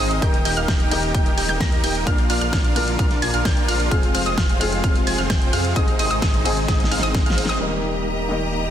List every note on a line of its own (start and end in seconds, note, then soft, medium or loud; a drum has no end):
0.00 0.20 G#1 loud
0.00 0.19 C3 medium
0.00 0.19 G#3 medium
0.00 0.19 C4 medium
0.00 0.19 D#4 medium
0.00 0.20 D#4 medium
0.00 0.19 G#4 medium
0.00 0.19 C5 medium
0.00 0.19 D#5 loud
0.00 0.19 D#6 loud
0.11 closed hi-hat soft
0.21 0.43 D#1 loud
0.21 0.88 D#3 medium
0.21 2.05 D#3 medium
0.21 0.88 A#3 medium
0.21 3.88 A#3 medium
0.21 0.37 D#4 medium
0.21 0.89 D#4 medium
0.21 0.37 G4 medium
0.21 2.05 G4 medium
0.21 0.89 G4 medium
0.21 0.37 A#4 medium
0.21 0.89 A#4 medium
0.21 0.37 D#5 medium
0.21 0.37 G5 loud
0.21 0.37 G6 loud
0.21 kick loud
0.21 closed hi-hat medium
0.34 closed hi-hat soft
0.45 0.55 D#1 loud
0.45 0.54 D#4 medium
0.45 0.54 G4 medium
0.45 0.54 A#4 medium
0.45 0.54 D#5 medium
0.45 0.54 G5 loud
0.45 0.54 G6 loud
0.45 open hi-hat loud
0.45 ride medium
0.57 0.66 D#1 medium
0.57 0.67 D#4 medium
0.57 0.67 G4 medium
0.57 0.67 A#4 medium
0.57 0.67 D#5 medium
0.57 0.67 F5 medium
0.57 0.67 F6 medium
0.57 closed hi-hat soft
0.68 0.89 D#1 medium
0.68 0.89 D#4 medium
0.68 0.89 G4 medium
0.68 0.89 A#4 medium
0.68 0.89 D#5 medium
0.68 0.89 G5 medium
0.68 0.89 G6 medium
0.68 kick loud
0.68 snare loud
0.68 closed hi-hat medium
0.80 closed hi-hat soft
0.90 1.12 D#1 loud
0.90 2.03 D#3 medium
0.90 2.04 A#3 medium
0.90 2.04 D#4 medium
0.90 1.12 D#4 medium
0.90 1.12 G4 medium
0.90 2.04 G4 medium
0.90 1.12 A#4 medium
0.90 2.05 A#4 loud
0.90 1.12 D#5 medium
0.90 1.12 G5 medium
0.90 1.12 G6 medium
0.90 open hi-hat medium
0.90 ride medium
1.03 closed hi-hat soft
1.14 1.35 D#1 loud
1.14 1.29 D#4 medium
1.14 1.29 G4 medium
1.14 1.29 A#4 medium
1.14 1.29 D#5 medium
1.14 1.29 G5 medium
1.14 1.29 G6 medium
1.14 kick loud
1.14 closed hi-hat medium
1.26 closed hi-hat soft
1.37 1.47 D#1 medium
1.37 1.47 D#4 medium
1.37 1.47 G4 medium
1.37 1.47 A#4 medium
1.37 1.47 D#5 medium
1.37 1.47 G5 medium
1.37 1.47 G6 medium
1.37 open hi-hat loud
1.37 ride medium
1.49 1.58 D#1 loud
1.49 1.58 D#4 medium
1.49 1.58 G4 medium
1.49 1.58 A#4 medium
1.49 1.58 D#5 medium
1.49 1.58 G5 medium
1.49 1.58 G6 medium
1.49 snare soft
1.49 closed hi-hat soft
1.60 1.81 D#2 loud
1.60 1.81 D#4 medium
1.60 1.81 G4 medium
1.60 1.81 A#4 medium
1.60 1.81 D#5 medium
1.60 1.81 A#5 loud
1.60 1.81 A#6 loud
1.60 kick loud
1.60 snare loud
1.60 closed hi-hat medium
1.72 closed hi-hat soft
1.84 2.04 D#1 loud
1.84 2.04 D#4 medium
1.84 2.04 G4 medium
1.84 2.04 A#4 medium
1.84 2.04 D#5 medium
1.84 2.04 G5 loud
1.84 2.04 G6 loud
1.84 open hi-hat loud
1.84 ride medium
1.95 closed hi-hat soft
2.05 2.28 A#1 loud
2.05 2.73 A#2 medium
2.05 3.89 D3 medium
2.05 2.73 A#3 medium
2.05 2.73 D4 medium
2.05 2.21 D4 medium
2.05 5.72 F4 medium
2.05 2.21 F4 medium
2.05 2.74 F4 medium
2.05 2.21 A#4 medium
2.05 2.74 A#4 medium
2.05 2.21 D5 medium
2.05 2.21 F5 loud
2.05 2.21 F6 loud
2.05 kick loud
2.05 closed hi-hat medium
2.18 closed hi-hat soft
2.30 2.39 A#1 loud
2.30 2.39 D4 medium
2.30 2.39 F4 medium
2.30 2.39 A#4 medium
2.30 2.39 D5 medium
2.30 2.39 F5 loud
2.30 2.39 F6 loud
2.30 open hi-hat loud
2.30 ride medium
2.41 2.51 A#1 loud
2.41 2.51 D4 medium
2.41 2.51 F4 medium
2.41 2.51 A#4 medium
2.41 2.51 D5 medium
2.41 2.51 F5 medium
2.41 2.51 F6 medium
2.41 closed hi-hat soft
2.53 2.74 A#1 loud
2.53 2.73 D4 medium
2.53 2.73 F4 medium
2.53 2.73 A#4 medium
2.53 2.73 D5 medium
2.53 2.73 F5 medium
2.53 2.73 F6 medium
2.53 kick loud
2.53 snare loud
2.53 closed hi-hat medium
2.64 closed hi-hat soft
2.75 2.97 A#1 loud
2.75 3.88 A#2 medium
2.75 3.88 A#3 medium
2.75 3.89 D4 medium
2.75 2.96 D4 medium
2.75 2.96 F4 medium
2.75 3.89 F4 medium
2.75 2.96 A#4 medium
2.75 3.89 A#4 loud
2.75 2.96 D5 medium
2.75 2.96 F5 medium
2.75 2.96 F6 medium
2.75 open hi-hat medium
2.75 ride medium
2.88 closed hi-hat soft
2.99 3.20 A#1 loud
2.99 3.14 D4 medium
2.99 3.14 F4 medium
2.99 3.14 A#4 medium
2.99 3.14 D5 medium
2.99 3.14 F5 medium
2.99 3.14 F6 medium
2.99 kick loud
2.99 closed hi-hat medium
3.10 snare soft
3.10 closed hi-hat soft
3.22 3.31 A#1 medium
3.22 3.32 D4 medium
3.22 3.32 F4 medium
3.22 3.32 A#4 medium
3.22 3.32 D5 medium
3.22 3.32 G#5 medium
3.22 3.32 G#6 medium
3.22 open hi-hat loud
3.22 ride medium
3.34 3.43 A#1 loud
3.34 3.42 D4 medium
3.34 3.42 F4 medium
3.34 3.42 A#4 medium
3.34 3.42 D5 medium
3.34 3.42 F5 medium
3.34 3.43 F6 medium
3.34 closed hi-hat soft
3.45 3.66 A#1 loud
3.45 3.66 D4 medium
3.45 3.66 F4 medium
3.45 3.66 A#4 medium
3.45 3.66 D5 medium
3.45 3.66 G5 loud
3.45 3.66 G6 loud
3.45 kick loud
3.45 snare loud
3.45 closed hi-hat medium
3.57 closed hi-hat soft
3.68 3.89 A#1 medium
3.68 3.89 D4 medium
3.68 3.89 F4 medium
3.68 3.89 A#4 medium
3.68 3.89 D5 medium
3.68 3.89 F5 loud
3.68 3.89 F6 loud
3.68 open hi-hat medium
3.68 ride medium
3.80 closed hi-hat soft
3.90 4.12 F1 loud
3.90 7.57 C3 medium
3.90 4.57 G#3 medium
3.90 7.57 G#3 medium
3.90 4.58 C4 medium
3.90 4.06 C4 medium
3.90 4.06 F4 medium
3.90 4.58 F4 medium
3.90 4.06 G#4 medium
3.90 4.58 G#4 medium
3.90 4.06 C5 medium
3.90 4.06 F5 loud
3.90 4.06 F6 loud
3.90 kick loud
3.90 closed hi-hat medium
4.03 closed hi-hat soft
4.14 4.24 F1 loud
4.14 4.23 C4 medium
4.14 4.23 F4 medium
4.14 4.23 G#4 medium
4.14 4.23 C5 medium
4.14 4.23 F5 loud
4.14 4.23 F6 loud
4.14 open hi-hat loud
4.14 ride medium
4.26 4.35 F1 medium
4.26 4.36 C4 medium
4.26 4.36 F4 medium
4.26 4.36 G#4 medium
4.26 4.36 C5 medium
4.26 4.36 D#5 medium
4.26 4.36 D#6 medium
4.26 closed hi-hat soft
4.38 4.58 F1 medium
4.38 4.58 C4 medium
4.38 4.58 F4 medium
4.38 4.58 G#4 medium
4.38 4.58 C5 medium
4.38 4.58 F5 medium
4.38 4.58 F6 medium
4.38 kick loud
4.38 snare loud
4.38 closed hi-hat medium
4.49 closed hi-hat soft
4.59 4.81 F1 loud
4.59 5.73 G#3 medium
4.59 5.73 C4 medium
4.59 4.81 C4 medium
4.59 4.81 F4 medium
4.59 5.74 F4 medium
4.59 4.81 G#4 medium
4.59 5.74 G#4 loud
4.59 4.81 C5 medium
4.59 4.81 F5 medium
4.59 4.81 F6 medium
4.59 open hi-hat medium
4.59 ride medium
4.72 closed hi-hat soft
4.84 5.05 F1 loud
4.84 4.98 C4 medium
4.84 4.98 F4 medium
4.84 4.98 G#4 medium
4.84 4.98 C5 medium
4.84 4.98 F5 medium
4.84 4.98 F6 medium
4.84 kick loud
4.84 closed hi-hat medium
4.96 closed hi-hat soft
5.07 5.16 F1 medium
5.07 5.17 C4 medium
5.07 5.17 F4 medium
5.07 5.17 G#4 medium
5.07 5.17 C5 medium
5.07 5.17 G#5 medium
5.07 5.17 G#6 medium
5.07 open hi-hat loud
5.07 ride medium
5.18 5.28 F1 loud
5.18 5.27 C4 medium
5.18 5.27 F4 medium
5.18 5.27 G#4 medium
5.18 5.27 C5 medium
5.18 5.27 F5 medium
5.18 5.27 F6 medium
5.18 snare soft
5.18 closed hi-hat soft
5.30 5.51 F1 loud
5.30 5.50 C4 medium
5.30 5.50 F4 medium
5.30 5.50 G#4 medium
5.30 5.50 C5 medium
5.30 5.50 G5 loud
5.30 5.50 G6 loud
5.30 kick loud
5.30 snare loud
5.30 closed hi-hat medium
5.42 closed hi-hat soft
5.53 5.74 F2 loud
5.53 5.73 C4 medium
5.53 5.73 F4 medium
5.53 5.73 G#4 medium
5.53 5.73 C5 medium
5.53 5.73 F5 loud
5.53 5.73 F6 loud
5.53 open hi-hat medium
5.53 ride medium
5.65 closed hi-hat soft
5.75 5.97 G#1 loud
5.75 6.42 G#2 medium
5.75 6.42 G#3 medium
5.75 5.91 C4 medium
5.75 6.43 C4 medium
5.75 7.59 D#4 medium
5.75 5.91 D#4 medium
5.75 6.43 D#4 medium
5.75 5.91 G#4 medium
5.75 6.43 G#4 medium
5.75 5.91 C5 medium
5.75 5.91 D#5 loud
5.75 5.91 D#6 loud
5.75 kick loud
5.75 closed hi-hat medium
5.88 closed hi-hat soft
5.99 6.08 G#1 loud
5.99 6.08 C4 medium
5.99 6.08 D#4 medium
5.99 6.08 G#4 medium
5.99 6.08 C5 medium
5.99 6.08 D#5 loud
5.99 6.08 D#6 loud
5.99 open hi-hat loud
5.99 ride medium
6.11 6.20 G#1 loud
6.11 6.20 C4 medium
6.11 6.20 D#4 medium
6.11 6.20 G#4 medium
6.11 6.20 C5 medium
6.11 6.20 D#5 medium
6.11 6.20 D#6 medium
6.11 closed hi-hat soft
6.22 6.43 G#1 medium
6.22 6.43 C4 medium
6.22 6.43 D#4 medium
6.22 6.43 G#4 medium
6.22 6.43 C5 medium
6.22 6.43 D#5 medium
6.22 6.43 D#6 medium
6.22 kick loud
6.22 snare loud
6.22 closed hi-hat medium
6.34 closed hi-hat soft
6.44 6.66 G#1 loud
6.44 7.57 G#2 medium
6.44 7.58 G#3 medium
6.44 6.66 C4 medium
6.44 7.58 C4 medium
6.44 6.66 D#4 medium
6.44 7.58 D#4 medium
6.44 6.66 G#4 medium
6.44 7.59 G#4 loud
6.44 6.66 C5 medium
6.44 6.66 D#5 medium
6.44 6.66 D#6 medium
6.44 open hi-hat medium
6.44 ride medium
6.57 closed hi-hat soft
6.68 6.89 G#1 medium
6.68 6.83 C4 medium
6.68 6.83 D#4 medium
6.68 6.83 G#4 medium
6.68 6.83 C5 medium
6.68 6.83 D#5 medium
6.68 6.83 D#6 medium
6.68 kick loud
6.68 snare medium
6.68 closed hi-hat medium
6.80 snare medium
6.80 closed hi-hat soft
6.91 7.01 G#1 medium
6.91 7.01 C4 medium
6.91 7.01 D#4 medium
6.91 7.01 G#4 medium
6.91 7.01 C5 medium
6.91 7.01 F5 medium
6.91 7.01 F6 medium
6.91 open hi-hat loud
6.91 ride medium
6.99 7.24 G#1 loud
6.99 7.23 C4 medium
6.99 7.23 D#4 medium
6.99 7.23 G#4 medium
6.99 7.23 C5 medium
6.99 7.23 D#5 loud
6.99 7.23 D#6 loud
6.99 snare medium
6.99 closed hi-hat soft
7.15 kick loud
7.15 snare medium
7.15 closed hi-hat medium
7.26 7.47 G#1 loud
7.26 7.46 C4 medium
7.26 7.46 D#4 medium
7.26 7.46 G#4 medium
7.26 7.46 C5 medium
7.26 7.46 F5 medium
7.26 7.46 F6 medium
7.26 closed hi-hat soft
7.30 snare loud
7.38 open hi-hat medium
7.38 ride medium
7.45 7.58 G#1 medium
7.45 7.59 C4 medium
7.45 7.59 D#4 medium
7.45 7.59 G#4 medium
7.45 7.59 C5 medium
7.45 7.59 D#5 medium
7.45 7.59 D#6 medium
7.45 snare loud
7.45 closed hi-hat soft
7.59 8.70 D#1 medium
7.59 8.27 D#3 medium
7.59 8.27 G3 medium
7.59 8.70 G3 medium
7.59 8.70 A#3 medium
7.59 8.27 A#3 medium
7.59 8.70 D#4 medium
7.59 8.28 D#4 medium
7.59 8.70 G4 medium
7.59 8.70 A#4 medium
7.59 8.70 D#5 medium
7.59 8.70 A#5 medium
8.29 8.70 D#3 medium
8.29 8.70 G3 medium
8.29 8.70 A#3 medium
8.29 8.70 D#4 medium